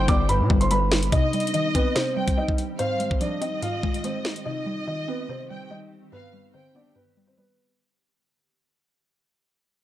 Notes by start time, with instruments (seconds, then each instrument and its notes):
Already playing: synth pluck G2 D3 G3, ambient pad G3 B3 D4 B4, violin section G5
0.08 808-style bass G1, synth pluck B3, grand piano D5 D6, kick, closed hi-hat
0.29 synth pluck G2, grand piano B4 B5, closed hi-hat
0.40 808-style bass B2
0.50 808-style bass G1, synth pluck G3, kick
0.61 grand piano C5 C6, closed hi-hat
0.71 synth pluck G3, grand piano B4 B5, closed hi-hat
0.92 snare
1.03 closed hi-hat
1.12 synth pluck C3, ambient pad D#3 G3 C4 G4, grand piano D#4 D#5, violin section D#5, kick, closed hi-hat
1.33 synth pluck G3, closed hi-hat
1.40 closed hi-hat
1.47 closed hi-hat
1.54 synth pluck D#3, grand piano D#4 D#5, closed hi-hat
1.75 grand piano B3 B4, synth pluck C4, kick, closed hi-hat
1.95 synth pluck C3, grand piano C4 C5, snare, closed hi-hat
2.17 synth pluck G3, violin section G5
2.28 kick, closed hi-hat
2.37 synth pluck G3, grand piano D#4 D#5
2.49 kick
2.58 closed hi-hat
2.79 synth pluck G#2, ambient pad G#3 F4, grand piano C4 C5, violin section F5, closed hi-hat
3.00 synth pluck G#3, closed hi-hat
3.11 kick
3.21 synth pluck F3, grand piano D4 D5, violin section D#5, closed hi-hat
3.41 synth pluck C4, grand piano D#4 D#5, closed hi-hat
3.62 synth pluck G#2, grand piano F4 F5, closed hi-hat
3.83 synth pluck G#3, kick
3.94 closed hi-hat
4.04 synth pluck G#3, grand piano C4 C5, closed hi-hat
4.25 snare
4.36 closed hi-hat
4.45 synth pluck C3, ambient pad D#3 G3 C4 G4, grand piano D#4 D#5, violin section D#5
4.66 synth pluck G3
4.87 synth pluck D#3, grand piano D#4 D#5
5.08 grand piano B3 B4, synth pluck C4
5.29 synth pluck C3, grand piano C4 C5
5.50 synth pluck G3, violin section G5
5.71 synth pluck G3, grand piano D#4 D#5
6.12 synth pluck G2, ambient pad D3 B3 G4, grand piano B3 B4, violin section F5
6.33 synth pluck G3
6.54 synth pluck D3, grand piano C4 C5, violin section G5
6.75 synth pluck B3, grand piano D4 D5
6.95 synth pluck G2, grand piano B3 B4
7.17 synth pluck G3
7.28 grand piano C4 C5
7.38 synth pluck G3, grand piano B3 B4